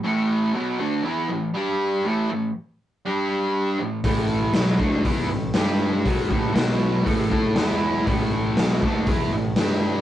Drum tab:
HH |--------|--------|o-o-o-o-|o-o-o-o-|
SD |--------|--------|--o---o-|--o---o-|
BD |--------|--------|o--oo---|oo--oo--|

HH |o-o-o-o-|
SD |--o---o-|
BD |o--oo---|